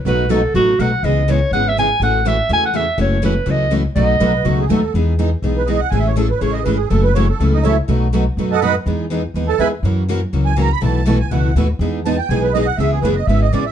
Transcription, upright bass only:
X:1
M:4/4
L:1/8
Q:"Swing" 1/4=245
K:E
V:1 name="Upright bass" clef=bass
B,,,4 A,,,2 B,,,2 | C,,4 G,,,4 | A,,,4 E,,4 | F,,,4 C,,4 |
B,,,2 B,,,2 C,,2 D,,2 | E,,4 B,,,4 | A,,,4 A,,,2 G,,,2 | F,,,4 C,,4 |
B,,,4 F,,4 | E,,4 D,,2 E,,2 | F,,4 C,,4 | B,,,4 C,,2 D,,2 |
E,,4 B,,,4 | C,,2 F,,,2 G,,,2 A,,,2 |]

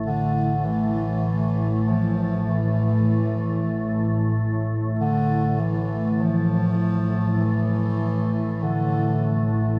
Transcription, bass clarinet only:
X:1
M:4/4
L:1/16
Q:1/4=49
K:Cmix
V:1 name="Bass clarinet" clef=bass
D,2 E,4 F,2 E,6 z2 | D,2 E,2 F,4 E,4 D,3 z |]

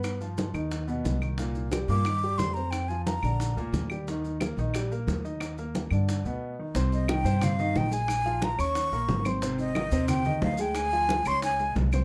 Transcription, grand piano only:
X:1
M:4/4
L:1/8
Q:1/4=179
K:Cm
V:1 name="Grand piano"
[_C_c] [F,F]2 [^D,^D]2 [=B,,=B,]2 [D,D] | [B,,B,]2 [G,G] [B,,B,] [E,E] [G,G]2 [Cc]- | [Cc] [F,F]2 [D,D]2 [B,,B,]2 [G,G] | [E,E]2 [B,B] [E,E] [G,G] [B,B]2 [Ee]- |
[Ee] [B,B]2 [D,D]2 [=B,,=B,]2 [E,E] | [C,Cc]2 [E,Ee] [C,Cc]2 [E,Ee]2 [A,Aa]- | [A,Aa] [F,Ff]2 [_D_d_d']2 [B,Bb]2 [Ccc'] | [C,Cc]2 [E,Ee] [C,Cc]2 [E,Ee]2 [A,Aa]- |
[A,Aa] [F,Ff]2 [_D_d_d']2 [A,Aa]2 [Ccc'] |]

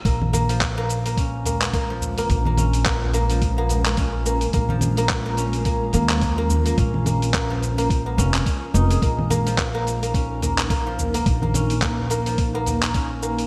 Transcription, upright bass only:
X:1
M:4/4
L:1/8
Q:"Swing 16ths" 1/4=107
K:Bbm
V:1 name="Upright bass" clef=bass
B,,,8 | B,,,8 | B,,,4- B,,, E,,3 | B,,,4- B,,, F,,, z F,,, |
B,,,8 | B,,,8 |]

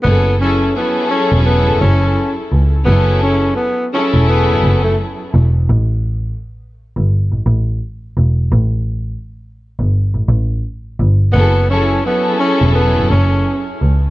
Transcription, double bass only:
X:1
M:4/4
L:1/16
Q:"Swing 16ths" 1/4=85
K:F#m
V:1 name="Double bass" clef=bass
F,,,4 z3 E,,, z F,,, F,,,2 z2 C,,2 | F,,,4 z3 E,,, z F,,, F,,,2 z2 E,,,2 | A,,,4 z3 =G,,, z A,,, A,,,2 z2 E,,,2 | A,,,4 z3 =G,,, z A,,, A,,,2 z2 G,,,2 |
F,,,4 z3 E,,, z F,,, F,,,2 z2 C,,2 |]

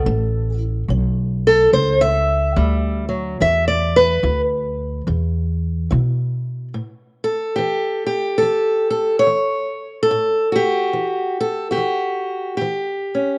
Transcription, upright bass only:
X:1
M:4/4
L:1/8
Q:"Swing" 1/4=72
K:Amix
V:1 name="Upright bass" clef=bass
A,,,2 B,,,2 C,,2 D,,2 | E,,2 D,,2 E,,2 B,,2 | z8 | z8 |]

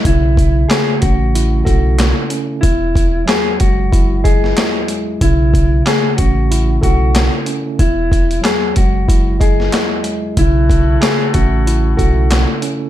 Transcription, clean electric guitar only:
X:1
M:4/4
L:1/16
Q:"Swing 16ths" 1/4=93
K:Bmix
V:1 name="Clean electric guitar"
E4 G2 F4 F3 z3 | E4 G2 F4 G6 | E4 G2 F4 F3 z3 | E4 G2 F4 G6 |
E4 G2 F4 F3 z3 |]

